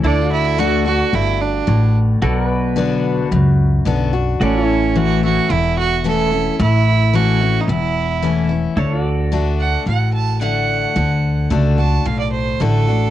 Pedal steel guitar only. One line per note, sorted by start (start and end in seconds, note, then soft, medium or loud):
0.05 0.30 E4 medium
0.05 2.21 A4 medium
0.05 2.22 D5 medium
0.30 2.20 F#4 medium
2.22 4.38 F#4 medium
2.22 2.48 A4 medium
2.22 4.39 D5 medium
2.48 4.39 B4 medium
4.41 4.66 F#4 medium
4.41 8.74 A4 medium
4.41 4.63 D5 medium
4.63 8.74 E4 medium
4.63 8.75 C#5 medium
8.77 9.02 E4 medium
8.77 13.10 A4 medium
8.77 8.99 C#5 medium
8.99 13.10 F#4 medium
8.99 13.10 D5 medium